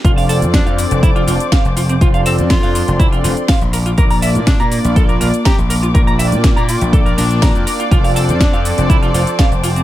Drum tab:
HH |xooxxxoxxxoxxxox|xxoxxxoxxxoxoxox|xooxxxoxxxoxxxox|xxoxxxoxxxoxoxox|
SH |xxxxxxxxxxxxxxxx|xxxxxxxxxxxxxxxx|xxxxxxxxxxxxxxxx|xxxxxxxxxxxxxxxx|
SD |----o-------o---|----o-------o---|----o-------o---|----o-------o---|
BD |o---o---o---o---|o---o---o---o---|o---o---o---o---|o---o---o---o---|

HH |xooxxxoxxxoxxxox|
SH |xxxxxxxxxxxxxxxx|
SD |----o-------o---|
BD |o---o---o---o---|